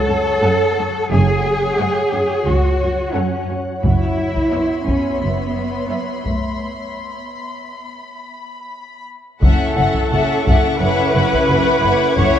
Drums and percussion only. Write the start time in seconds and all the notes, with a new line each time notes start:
3.84 taiko
4.36 taiko
4.87 taiko
6.26 taiko
9.43 taiko
9.95 taiko
10.47 taiko
11.33 taiko
12.18 taiko